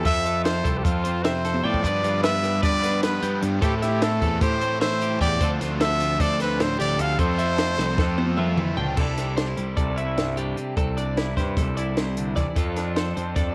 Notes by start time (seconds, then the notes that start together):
Already playing: F4
0.05 F2 F3 A4 E5, kick, closed hi-hat
0.25 A4 E5, closed hi-hat
0.45 F4 C5, snare, closed hi-hat
0.64 C2 C4 A4, kick, closed hi-hat
0.78 G4
0.83 F2 C4 F4, kick, closed hi-hat
1.04 C4 C5, closed hi-hat
1.23 C3 C5 E5, snare, closed hi-hat
1.44 A4, snare, closed hi-hat
1.54 high tom
1.64 A2 F3 A4 D5 G5
1.74 kick
1.83 G2 D3 F3 B3 D4 B4 D5, kick, closed hi-hat
2.04 G2 F4, closed hi-hat
2.22 G2 D3 F3 B3 D4 B4 E5, snare, closed hi-hat
2.42 F3 G3 B3 D4, snare, closed hi-hat
2.61 G2 D3 F3 B3 D4 B4 D5, kick, closed hi-hat
2.82 F3 B3 D4 B4, snare, closed hi-hat
3.03 B4, snare, closed hi-hat
3.21 G2 F3 B3 D4 G4, closed hi-hat
3.40 G2 D3 F3 B3 D4, closed hi-hat
3.61 A2 E3 A3 C4 E4 G4 A4, kick, closed hi-hat
3.77 A4
3.82 E4 G4 E5, snare, closed hi-hat
4.00 A2 E3 A3 C4 E4 A4, snare, closed hi-hat
4.20 E2 A3 C4 E4 A4, kick, closed hi-hat
4.41 A2 E3 A3 C4 E4 G4 C5, kick, closed hi-hat
4.61 A3 C4 E4 C5, closed hi-hat
4.81 E3 C5 E5, snare, closed hi-hat
5.00 A3 C4 E4 G4, closed hi-hat
5.20 E2 A2 E3 A3 C4 E4 G4 D5 G5, kick, closed hi-hat
5.40 D2 D3 F3 A3 C4 D4 F4 C5, kick, closed hi-hat
5.44 A4
5.61 D2 F4, snare, closed hi-hat
5.80 D3 A3 C4 D4 F4 A4 E5, snare, closed hi-hat
6.00 F3 A3 D4 F4, closed hi-hat
6.19 D2 D3 A3 D4 F4 A4 C5 D5, kick, closed hi-hat
6.38 A3 C4 D4 F4 A4 B4, snare, closed hi-hat
6.59 A2 C5, snare, closed hi-hat
6.78 D2 D4 F4 G4 D5, closed hi-hat
6.82 A3
6.88 A4
6.97 D2 D3 A3 D4 F4 A4 F5, closed hi-hat
7.17 F2 F3 A3 C4 F4 A4 C5, kick, closed hi-hat
7.38 A4 E5, closed hi-hat
7.57 F3 A3 C4 F4, snare, closed hi-hat
7.78 C2 A3 C4 F4 A4, snare
7.98 F2 F3 A3 C4 F4 A4, kick, snare
8.18 A3 C4 F4 C5, high tom
8.37 F3 E5, mid tom
8.57 E3 A3 C4 F4, mid tom
8.77 C#2 D3 F3 A3 C4 F4 G5, floor tom
8.97 C2 C3 G3 D4 E4 A4, kick, crash
9.01 A4
9.17 D4, snare, closed hi-hat
9.37 D4 C5, snare, closed hi-hat
9.47 E4
9.57 C2 G3, closed hi-hat
9.77 C2 A4 D5, kick, closed hi-hat
9.96 E4 E5, closed hi-hat
10.17 G2, snare, closed hi-hat
10.37 D4 G4, closed hi-hat
10.56 C3, closed hi-hat
10.77 C2 C3 A4, kick, closed hi-hat
10.97 D4 D5, closed hi-hat
11.17 E4, snare, closed hi-hat
11.37 G2 G3 C5, kick, snare, closed hi-hat
11.57 C2 A4, kick, snare, closed hi-hat
11.77 E4 D5, closed hi-hat
11.97 C3 C5, snare, closed hi-hat
12.17 D3, closed hi-hat
12.36 C2 E3 D5, kick, snare, closed hi-hat
12.56 F2 F3 A4, kick, closed hi-hat
12.76 D4, snare, closed hi-hat
12.96 A4 C5, snare, closed hi-hat
13.17 F2 C4, closed hi-hat
13.36 F2 A4 D5, kick, snare, closed hi-hat